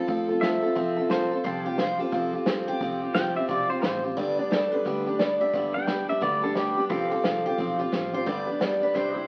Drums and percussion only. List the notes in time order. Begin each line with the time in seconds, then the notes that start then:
0.08 kick, open hi-hat
0.42 snare, open hi-hat
0.76 kick, open hi-hat
1.10 snare, open hi-hat
1.44 kick, open hi-hat
1.78 snare, open hi-hat
2.12 kick, open hi-hat
2.46 snare, open hi-hat
2.81 kick, open hi-hat
3.15 snare, open hi-hat
3.49 kick, open hi-hat
3.83 snare, open hi-hat
4.17 kick, open hi-hat
4.52 snare, open hi-hat
4.86 kick, open hi-hat
5.20 snare, open hi-hat
5.54 kick, open hi-hat
5.87 snare, open hi-hat
6.21 kick, open hi-hat
6.55 snare, open hi-hat
6.90 kick, open hi-hat
7.24 snare, open hi-hat
7.58 kick, open hi-hat
7.92 snare, open hi-hat
8.27 kick, open hi-hat
8.61 snare, open hi-hat
8.95 kick, snare